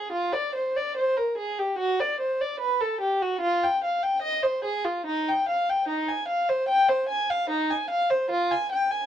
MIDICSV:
0, 0, Header, 1, 2, 480
1, 0, Start_track
1, 0, Key_signature, -3, "minor"
1, 0, Tempo, 821918
1, 1045, Time_signature, 4, 2, 24, 8
1, 3438, Tempo, 803213
1, 5334, End_track
2, 0, Start_track
2, 0, Title_t, "Violin"
2, 0, Program_c, 0, 40
2, 0, Note_on_c, 0, 68, 58
2, 72, Note_on_c, 0, 65, 65
2, 75, Note_off_c, 0, 68, 0
2, 193, Note_on_c, 0, 74, 69
2, 195, Note_off_c, 0, 65, 0
2, 318, Note_off_c, 0, 74, 0
2, 322, Note_on_c, 0, 72, 59
2, 441, Note_off_c, 0, 72, 0
2, 447, Note_on_c, 0, 74, 65
2, 564, Note_on_c, 0, 72, 75
2, 566, Note_off_c, 0, 74, 0
2, 682, Note_off_c, 0, 72, 0
2, 684, Note_on_c, 0, 70, 60
2, 803, Note_on_c, 0, 68, 64
2, 805, Note_off_c, 0, 70, 0
2, 922, Note_off_c, 0, 68, 0
2, 926, Note_on_c, 0, 67, 60
2, 1040, Note_on_c, 0, 66, 76
2, 1046, Note_off_c, 0, 67, 0
2, 1160, Note_off_c, 0, 66, 0
2, 1168, Note_on_c, 0, 74, 66
2, 1285, Note_on_c, 0, 72, 57
2, 1286, Note_off_c, 0, 74, 0
2, 1402, Note_off_c, 0, 72, 0
2, 1406, Note_on_c, 0, 74, 54
2, 1518, Note_on_c, 0, 71, 75
2, 1525, Note_off_c, 0, 74, 0
2, 1638, Note_off_c, 0, 71, 0
2, 1639, Note_on_c, 0, 69, 68
2, 1757, Note_on_c, 0, 67, 60
2, 1760, Note_off_c, 0, 69, 0
2, 1875, Note_off_c, 0, 67, 0
2, 1878, Note_on_c, 0, 66, 60
2, 1990, Note_on_c, 0, 65, 79
2, 1997, Note_off_c, 0, 66, 0
2, 2110, Note_off_c, 0, 65, 0
2, 2122, Note_on_c, 0, 79, 67
2, 2238, Note_off_c, 0, 79, 0
2, 2242, Note_on_c, 0, 77, 57
2, 2353, Note_on_c, 0, 79, 63
2, 2355, Note_off_c, 0, 77, 0
2, 2465, Note_on_c, 0, 75, 78
2, 2473, Note_off_c, 0, 79, 0
2, 2586, Note_off_c, 0, 75, 0
2, 2586, Note_on_c, 0, 72, 65
2, 2710, Note_on_c, 0, 68, 71
2, 2711, Note_off_c, 0, 72, 0
2, 2830, Note_on_c, 0, 65, 57
2, 2832, Note_off_c, 0, 68, 0
2, 2956, Note_on_c, 0, 63, 70
2, 2958, Note_off_c, 0, 65, 0
2, 3080, Note_off_c, 0, 63, 0
2, 3089, Note_on_c, 0, 79, 66
2, 3204, Note_on_c, 0, 77, 64
2, 3207, Note_off_c, 0, 79, 0
2, 3320, Note_off_c, 0, 77, 0
2, 3326, Note_on_c, 0, 79, 60
2, 3434, Note_on_c, 0, 63, 68
2, 3441, Note_off_c, 0, 79, 0
2, 3552, Note_off_c, 0, 63, 0
2, 3554, Note_on_c, 0, 80, 62
2, 3673, Note_on_c, 0, 77, 64
2, 3674, Note_off_c, 0, 80, 0
2, 3791, Note_off_c, 0, 77, 0
2, 3798, Note_on_c, 0, 72, 66
2, 3914, Note_on_c, 0, 79, 80
2, 3917, Note_off_c, 0, 72, 0
2, 4033, Note_off_c, 0, 79, 0
2, 4037, Note_on_c, 0, 72, 70
2, 4155, Note_on_c, 0, 80, 69
2, 4158, Note_off_c, 0, 72, 0
2, 4276, Note_off_c, 0, 80, 0
2, 4283, Note_on_c, 0, 77, 68
2, 4400, Note_on_c, 0, 63, 79
2, 4403, Note_off_c, 0, 77, 0
2, 4519, Note_off_c, 0, 63, 0
2, 4523, Note_on_c, 0, 80, 63
2, 4641, Note_on_c, 0, 77, 73
2, 4643, Note_off_c, 0, 80, 0
2, 4759, Note_off_c, 0, 77, 0
2, 4761, Note_on_c, 0, 72, 64
2, 4882, Note_off_c, 0, 72, 0
2, 4883, Note_on_c, 0, 65, 76
2, 5000, Note_off_c, 0, 65, 0
2, 5007, Note_on_c, 0, 80, 72
2, 5123, Note_off_c, 0, 80, 0
2, 5129, Note_on_c, 0, 79, 71
2, 5242, Note_off_c, 0, 79, 0
2, 5246, Note_on_c, 0, 80, 67
2, 5334, Note_off_c, 0, 80, 0
2, 5334, End_track
0, 0, End_of_file